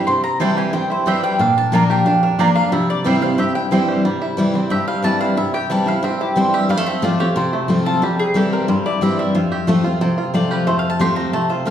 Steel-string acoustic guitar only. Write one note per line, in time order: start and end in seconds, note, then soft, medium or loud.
0.08 0.70 C3 medium
0.40 0.72 E3 medium
0.40 0.72 G3 medium
0.40 0.72 C4 loud
0.40 0.73 E4 loud
0.73 1.36 G2 medium
1.06 1.38 E3 medium
1.06 1.38 G3 medium
1.06 1.38 C4 medium
1.06 1.39 E4 medium
1.39 2.03 A#2 medium
1.72 2.04 F3 medium
1.72 2.04 A#3 medium
1.72 2.05 D4 loud
1.72 2.05 F4 loud
2.06 2.69 F2 medium
2.39 2.70 F3 medium
2.39 2.71 A#3 medium
2.39 2.71 D4 medium
2.39 2.71 F4 medium
2.72 3.35 C3 medium
3.04 3.21 E3 medium
3.04 3.21 G3 medium
3.04 3.22 C4 loud
3.04 3.20 E4 loud
3.21 3.38 C4 medium
3.21 3.37 E4 medium
3.38 4.01 G2 medium
3.71 4.03 E3 medium
3.71 4.03 G3 medium
3.71 4.04 C4 medium
3.71 4.04 E4 medium
4.05 4.68 C3 medium
4.37 4.53 E3 loud
4.37 4.54 G3 loud
4.37 4.54 C4 loud
4.37 4.52 E4 loud
4.54 4.71 C4 soft
4.54 4.70 E4 medium
4.70 5.34 G2 loud
5.02 5.35 E3 medium
5.02 5.35 G3 medium
5.02 5.36 C4 medium
5.02 5.36 E4 medium
5.37 6.00 C3 medium
5.70 5.86 E3 medium
5.70 5.86 G3 medium
5.70 5.87 C4 loud
5.70 5.85 E4 loud
5.86 6.03 C4 medium
5.86 6.02 E4 medium
6.03 6.66 G2 medium
6.36 6.68 E3 medium
6.36 6.68 G3 medium
6.36 6.68 C4 medium
6.36 6.69 E4 loud
6.69 7.32 F2 medium
7.02 7.18 F3 loud
7.02 7.19 A3 loud
7.02 7.19 C4 loud
7.02 7.17 F4 loud
7.19 7.36 C4 medium
7.19 7.35 F4 medium
7.36 7.99 C3 medium
7.68 8.00 F3 medium
7.68 8.01 A3 medium
7.68 8.01 C4 medium
7.68 8.01 F4 medium
8.02 8.65 C3 medium
8.34 8.66 E3 medium
8.34 8.67 G3 medium
8.34 8.67 C4 loud
8.34 8.67 E4 loud
8.68 9.31 G2 medium
9.01 9.33 E3 medium
9.01 9.33 G3 medium
9.01 9.33 C4 medium
9.01 9.34 E4 medium
9.35 9.98 F2 medium
9.67 9.83 F3 medium
9.67 9.84 A3 loud
9.67 9.84 C4 medium
9.67 9.83 F4 loud
9.84 10.01 C4 medium
9.84 10.00 F4 medium
10.01 10.64 C3 medium
10.34 10.65 F3 medium
10.34 10.66 A3 medium
10.34 10.66 C4 medium
10.34 10.66 F4 loud
10.67 11.30 F2 medium
10.99 11.31 F3 loud
10.99 11.32 A3 medium
10.99 11.32 C4 medium
10.99 11.32 F4 loud
11.33 11.70 C3 medium
11.65 11.70 F3 medium
11.65 11.70 A3 medium
11.65 11.70 C4 loud